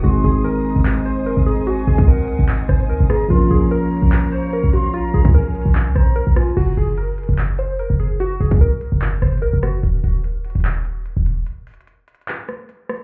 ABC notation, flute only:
X:1
M:4/4
L:1/8
Q:1/4=147
K:Gblyd
V:1 name="Flute"
c'2 b3 c'2 b | a2 g3 a2 b | c'2 b3 d'2 c' | b2 a3 b2 a |
z8 | z8 | z8 | z8 |]